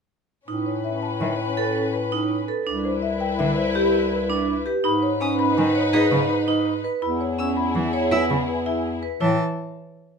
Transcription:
0.47 bass clarinet A2, string section C#4 B4, vibraphone D#4
0.66 marimba C#5
0.84 marimba E5
1.02 marimba A5
1.21 cello D#3, marimba E5
1.39 marimba C#5
1.57 marimba A4, vibraphone A4
1.94 marimba B4
2.12 vibraphone D#4
2.48 vibraphone A4, marimba B4
2.66 bass clarinet C2, vibraphone D4, string section E4 B4
2.85 marimba C5
3.02 marimba E5
3.20 marimba G5
3.39 cello D3, marimba E5
3.57 marimba C5
3.75 vibraphone G4, marimba G4
4.12 marimba B4
4.30 vibraphone D4
4.66 vibraphone G4, marimba B4
4.84 bass clarinet G#2, vibraphone D#4, string section D#4 B4, marimba B5
5.02 marimba C#5
5.20 vibraphone C#4, marimba G#5, violin D#6
5.39 marimba B5
5.58 cello D#3, marimba G#5
5.75 vibraphone C#5, marimba C#5
5.93 cello D#4, marimba G#4, vibraphone B4, violin D#6
6.11 cello C#3, marimba B5
6.30 marimba B4
6.48 vibraphone D#4, marimba D#5
6.84 marimba B4, vibraphone B4
7.02 bass clarinet E2, vibraphone E4, string section E4 G#4, marimba B5
7.21 marimba C#5
7.38 vibraphone C#4, marimba G#5, violin E6
7.57 marimba B5
7.75 cello E3, marimba G#5
7.93 marimba C#5, vibraphone C#5
8.11 cello E4, marimba G#4, vibraphone B4, violin E6
8.30 cello C#3, marimba B5
8.48 marimba B4
8.66 vibraphone E4, marimba E5
9.03 vibraphone B4, marimba B4
9.21 bass clarinet A2, cello E3, vibraphone E4, marimba C#5, violin A5

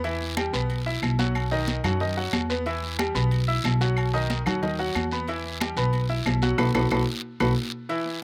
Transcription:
Already playing: upright bass E2
0.04 grand piano E3 E4 E5, high conga, low agogo, long guiro
0.21 high conga
0.37 grand piano G3 G4 G5, high conga, low agogo, short guiro, claves
0.53 upright bass B1, grand piano B3 B4 B5, high conga, low agogo, short guiro
0.70 high conga, low agogo, long guiro
0.86 grand piano E4 E5 E6, high conga
1.02 upright bass B1, high conga, low agogo, short guiro, claves
1.19 grand piano F#3 F#4 F#5, high conga, short guiro
1.35 high conga, low agogo, long guiro, claves
1.51 grand piano D#3 D#4 D#5, high conga
1.68 high conga, low agogo, short guiro
1.84 upright bass F#2, grand piano F#3 F#4 F#5, low conga, low agogo, short guiro, claves
2.00 grand piano D#3 D#4 D#5, high conga, long guiro
2.17 grand piano F#3 F#4 F#5, high conga
2.33 upright bass E2, high conga, low agogo, short guiro, claves
2.50 grand piano B3 B4 B5, short guiro
2.66 grand piano E3 E4 E5, high conga, low agogo, long guiro
2.83 high conga
2.99 grand piano G3 G4 G5, high conga, low agogo, short guiro, claves
3.15 upright bass B1, grand piano B3 B4 B5, high conga, low agogo, short guiro
3.31 high conga, low agogo, long guiro
3.48 grand piano E4 E5 E6, high conga
3.64 upright bass B1, high conga, low timbale, low agogo, short guiro, claves
3.81 grand piano F#3 F#4 F#5, high conga, short guiro
3.97 high conga, low agogo, long guiro, claves
4.13 grand piano D#3 D#4 D#5, high conga
4.30 high conga, low agogo, short guiro
4.46 upright bass D#2, grand piano F#3 F#4 F#5, low conga, low agogo, short guiro, claves
4.62 grand piano D#3 D#4 D#5, high conga, low conga, long guiro
4.79 grand piano F#3 F#4 F#5, high conga
4.95 upright bass E2, high conga, low agogo, short guiro, claves
5.11 grand piano B3 B4 B5, short guiro
5.28 grand piano E3 E4 E5, high conga, low agogo, long guiro
5.45 high conga
5.60 grand piano G3 G4 G5, high conga, low agogo, short guiro, claves
5.76 upright bass B1, grand piano B3 B4 B5, high conga, low agogo, short guiro
5.93 high conga, low agogo, long guiro
6.09 grand piano E4 E5 E6, high conga
6.26 upright bass B1, high conga, low timbale, low agogo, short guiro, claves
6.42 grand piano F#3 F#4 F#5, high conga, short guiro
6.58 upright bass B1, grand piano F#4 A4 B4, high conga, high timbale, long guiro, claves
6.74 upright bass B1, grand piano F#4 A4 B4, high conga, high timbale, long guiro, claves
6.91 upright bass B1, grand piano F#4 A4 B4, high conga, high timbale, long guiro, claves
7.40 upright bass B1, grand piano F#4 A4 B4, high conga, high timbale, long guiro, claves
7.89 grand piano E3 E4 E5, high conga, low agogo, long guiro
8.06 high conga

